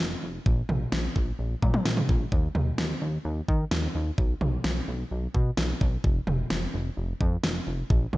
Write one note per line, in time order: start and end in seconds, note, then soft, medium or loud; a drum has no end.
0.00 0.16 F1 loud
0.23 0.39 F1 loud
0.46 0.62 A#1 loud
0.46 kick loud
0.69 0.86 A#1 medium
0.69 mid tom medium
0.92 1.09 A#1 loud
0.92 snare loud
1.16 1.32 A#1 medium
1.16 kick loud
1.39 1.55 A#1 loud
1.62 1.79 A#2 loud
1.62 kick medium
1.62 mid tom medium
1.74 mid tom medium
1.85 2.02 A#1 loud
1.85 snare loud
1.97 mid tom loud
2.09 2.25 A#1 loud
2.09 kick medium
2.32 2.48 D#2 loud
2.32 kick loud
2.55 2.72 D#2 medium
2.55 mid tom medium
2.78 2.95 D#2 loud
2.78 snare loud
3.02 3.18 D#2 loud
3.25 3.41 D#2 loud
3.48 3.65 D#3 medium
3.48 kick medium
3.71 3.88 D#2 loud
3.71 snare loud
3.95 4.11 D#2 loud
4.18 4.34 B1 loud
4.18 kick loud
4.41 4.58 B1 medium
4.41 mid tom loud
4.64 4.81 B1 loud
4.64 snare loud
4.88 5.04 B1 loud
5.11 5.27 B1 loud
5.35 5.51 B2 medium
5.35 kick medium
5.57 5.74 B1 loud
5.57 snare loud
5.81 5.97 B1 loud
5.81 kick medium
6.04 6.20 F1 loud
6.04 kick loud
6.27 6.44 F1 medium
6.27 mid tom loud
6.50 6.67 F1 loud
6.50 snare loud
6.74 6.90 F1 loud
6.97 7.13 F1 loud
7.21 7.37 F2 loud
7.21 kick medium
7.44 7.60 F1 loud
7.44 snare loud
7.67 7.83 F1 loud
7.90 8.07 A#1 loud
7.90 kick loud
8.13 8.18 A#1 loud
8.13 mid tom loud